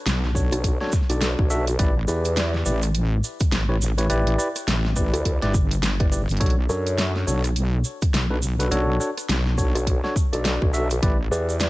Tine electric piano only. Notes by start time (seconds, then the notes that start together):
0.35 D4 F#4 A4 C#5
0.81 D4 F#4 A4 C#5
1.10 D4 F#4 A4 D5
1.50 D4 F#4 A4 E5
1.79 E4 G4 B4 D5
2.08 E4 G4 B4 D5
2.66 E4 G4 B4 D5
3.69 E4 G4 B4 C#5
3.98 E4 G4 B4 C#5
4.10 E4 G4 B4 D5
4.38 E4 G4 B4 D5
4.96 E4 G4 B4 D5
5.42 E4 G4 B4 D5
6.00 E4 G4 B4 D5
6.12 E4 G4 B4 D5
6.40 D4 F#4 A4 C#5
6.69 D4 F#4 A4 C#5
7.27 D4 F#4 A4 C#5
8.30 D4 F#4 A4 B4
8.59 D4 F#4 A4 B4
8.71 D4 F#4 A4 C#5
9.00 D4 F#4 A4 C#5
9.58 D4 F#4 A4 C#5
10.04 D4 F#4 A4 C#5
10.33 D4 F#4 A4 D5
10.73 D4 F#4 A4 E5
11.02 E4 G4 B4 D5
11.31 E4 G4 B4 D5